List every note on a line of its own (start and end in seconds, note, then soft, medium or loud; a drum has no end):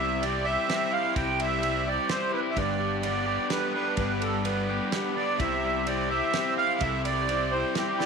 0.00 0.55 C2 medium
0.00 0.22 C3 medium
0.00 0.23 G3 medium
0.00 1.39 G3 medium
0.00 0.22 C4 medium
0.00 2.54 C4 medium
0.00 0.23 E4 medium
0.00 2.54 E4 medium
0.00 0.24 G4 medium
0.00 0.45 G4 medium
0.00 2.54 G4 medium
0.00 2.54 C5 medium
0.00 0.24 E5 medium
0.21 0.46 G3 medium
0.21 0.46 C4 medium
0.21 0.46 E4 medium
0.21 0.44 G4 medium
0.21 0.46 D5 medium
0.21 ride medium
0.44 0.69 C4 soft
0.44 0.70 E4 soft
0.44 0.69 G4 soft
0.44 0.93 E5 loud
0.69 1.16 G3 medium
0.69 1.16 C4 medium
0.69 1.16 E4 medium
0.69 1.17 G4 medium
0.69 snare medium
0.69 ride medium
0.92 2.09 E4 medium
0.92 1.14 F5 loud
1.16 1.96 C2 medium
1.16 1.63 C3 medium
1.16 1.61 G3 medium
1.16 1.62 C4 medium
1.16 1.63 E4 medium
1.16 1.64 G4 medium
1.16 1.40 G5 medium
1.16 kick loud
1.16 ride medium
1.39 2.80 G3 medium
1.39 1.89 E5 loud
1.39 ride medium
1.62 1.86 G3 medium
1.62 1.86 C4 medium
1.62 1.85 E4 medium
1.62 1.84 G4 medium
1.62 ride medium
1.85 2.09 C4 soft
1.85 2.09 E4 soft
1.85 2.09 G4 soft
1.85 2.11 D5 medium
2.08 2.32 G3 medium
2.08 2.32 C4 medium
2.08 2.31 E4 medium
2.08 2.30 G4 medium
2.08 2.32 C5 medium
2.08 snare medium
2.08 ride medium
2.31 2.56 C4 soft
2.31 2.56 E4 soft
2.31 2.56 G4 soft
2.31 2.40 B4 medium
2.51 2.57 E5 medium
2.55 3.37 G1 medium
2.55 3.03 G2 medium
2.55 3.03 D3 medium
2.55 3.02 G3 medium
2.55 3.02 B3 medium
2.55 5.37 B3 medium
2.55 2.95 D4 medium
2.55 5.37 D4 medium
2.55 3.03 D4 medium
2.55 2.95 G4 medium
2.55 5.37 G4 medium
2.55 3.05 G4 medium
2.55 5.36 B4 medium
2.55 2.95 B4 medium
2.55 3.02 D5 medium
2.55 kick medium
2.55 ride medium
2.80 4.21 G3 medium
3.02 3.49 G3 medium
3.02 3.49 B3 medium
3.02 3.42 D4 medium
3.02 3.50 D4 medium
3.02 3.42 G4 soft
3.02 3.52 G4 medium
3.02 3.43 B4 medium
3.02 3.47 D5 medium
3.02 ride medium
3.26 4.69 G4 medium
3.50 3.96 G3 medium
3.50 3.96 B3 medium
3.50 3.89 D4 medium
3.50 3.96 D4 medium
3.50 3.89 G4 medium
3.50 3.98 G4 medium
3.50 3.90 A4 medium
3.50 3.73 B4 medium
3.50 snare medium
3.50 ride medium
3.74 4.92 D4 medium
3.74 3.96 B4 medium
3.96 4.78 G1 medium
3.96 4.44 G2 medium
3.96 4.45 D3 medium
3.96 4.43 G3 medium
3.96 4.43 B3 medium
3.96 4.36 D4 medium
3.96 4.44 D4 medium
3.96 4.37 G4 medium
3.96 4.45 G4 medium
3.96 4.22 B4 medium
3.96 4.37 B4 medium
3.96 kick loud
3.96 ride medium
4.21 5.63 G3 medium
4.21 4.44 A4 medium
4.21 ride medium
4.43 4.68 G3 medium
4.43 4.67 B3 medium
4.43 4.84 D4 medium
4.43 4.67 D4 medium
4.43 4.66 G4 medium
4.43 4.84 G4 medium
4.43 4.85 A4 medium
4.43 4.89 B4 medium
4.43 ride medium
4.67 4.91 G3 soft
4.67 4.91 B3 soft
4.67 4.92 D4 soft
4.67 4.91 G4 soft
4.92 5.38 G3 soft
4.92 5.38 B3 medium
4.92 5.31 D4 medium
4.92 5.38 D4 medium
4.92 5.31 G4 medium
4.92 5.39 G4 medium
4.92 5.32 B4 medium
4.92 snare medium
4.92 ride medium
5.15 5.40 D4 medium
5.15 5.40 D5 medium
5.38 6.20 C2 medium
5.38 5.86 C3 medium
5.38 5.85 G3 medium
5.38 5.85 C4 medium
5.38 8.06 C4 medium
5.38 5.86 E4 medium
5.38 5.78 E4 medium
5.38 8.06 E4 medium
5.38 5.87 G4 medium
5.38 8.06 G4 medium
5.38 5.79 G4 medium
5.38 8.06 C5 medium
5.38 5.79 C5 medium
5.38 5.88 E5 medium
5.38 kick loud
5.38 ride medium
5.64 7.04 G3 medium
5.86 6.10 G3 medium
5.86 6.10 C4 medium
5.86 6.26 E4 medium
5.86 6.09 E4 medium
5.86 6.07 G4 medium
5.86 6.26 G4 medium
5.86 6.26 C5 medium
5.86 6.09 D5 medium
5.86 ride medium
6.09 6.32 C4 soft
6.09 6.33 E4 soft
6.09 6.33 G4 medium
6.09 6.54 E5 medium
6.33 6.57 G3 medium
6.33 6.57 C4 medium
6.33 6.56 E4 medium
6.33 6.73 E4 medium
6.33 6.55 G4 medium
6.33 6.73 G4 medium
6.33 6.73 C5 medium
6.33 snare medium
6.33 ride medium
6.56 6.78 C4 soft
6.56 6.79 E4 soft
6.56 6.79 G4 soft
6.56 6.82 F5 loud
6.79 7.62 C2 medium
6.79 7.27 C3 medium
6.79 7.26 G3 medium
6.79 7.28 C4 medium
6.79 7.28 E4 medium
6.79 7.20 E4 medium
6.79 7.28 G4 medium
6.79 7.20 G4 medium
6.79 7.21 A4 medium
6.79 7.02 E5 medium
6.79 kick loud
6.79 ride medium
7.05 8.06 G3 medium
7.05 7.54 D5 loud
7.05 ride medium
7.27 7.52 G3 medium
7.27 7.52 C4 medium
7.27 7.67 E4 medium
7.27 7.52 E4 medium
7.27 7.67 G4 medium
7.27 7.50 G4 medium
7.27 7.68 C5 medium
7.27 ride medium
7.51 7.74 C4 soft
7.51 7.75 E4 soft
7.51 7.75 G4 soft
7.51 7.76 C5 medium
7.75 7.99 G3 medium
7.75 7.99 C4 medium
7.75 8.06 E4 medium
7.75 7.99 E4 medium
7.75 8.06 G4 medium
7.75 7.97 G4 medium
7.75 8.06 C5 medium
7.75 snare medium
7.75 ride medium
7.99 8.06 C4 soft
7.99 8.06 E4 soft
7.99 8.06 G4 soft
7.99 8.06 D5 medium
7.99 snare medium